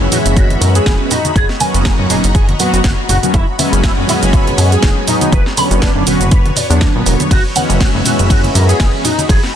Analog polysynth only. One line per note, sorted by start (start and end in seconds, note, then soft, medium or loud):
0.10 1.09 E3 medium
0.10 1.09 G#3 medium
0.10 1.10 B3 medium
0.10 1.10 C#4 loud
1.60 2.07 F#3 medium
1.60 2.07 A#3 medium
1.60 2.08 B3 medium
1.60 2.08 C#4 loud
2.10 2.23 F#3 loud
2.10 2.23 A#3 medium
2.10 2.23 B3 medium
2.10 2.23 C#4 loud
2.59 2.79 F#3 loud
2.59 2.79 A#3 medium
2.59 2.79 B3 medium
2.59 2.79 F#4 loud
3.23 3.33 F#3 medium
3.23 3.33 A#3 medium
3.23 3.33 B3 medium
3.23 3.33 C#4 loud
3.58 4.06 F#3 medium
3.58 4.06 G#3 medium
3.58 4.06 B3 medium
3.58 4.06 C#4 loud
4.07 5.31 F#3 loud
4.07 5.31 G#3 medium
4.07 5.31 B3 medium
4.07 5.32 C#4 loud
5.57 6.04 D3 medium
5.57 6.04 F#3 medium
5.57 6.04 B3 medium
5.57 6.05 C#4 medium
6.06 6.20 D3 loud
6.06 6.20 F#3 medium
6.06 6.20 B3 medium
6.06 6.20 C#4 loud
6.70 6.91 D3 medium
6.70 6.92 F#3 medium
6.70 6.92 B3 medium
6.70 6.92 D4 medium
6.94 7.29 D3 medium
6.94 7.29 F#3 medium
6.94 7.30 B3 medium
7.55 8.02 E3 medium
7.55 8.02 G#3 medium
7.55 8.03 B3 medium
7.55 8.03 C#4 loud
8.04 9.02 E3 medium
8.04 9.03 G#3 medium
8.04 9.03 B3 medium
8.04 9.04 C#4 loud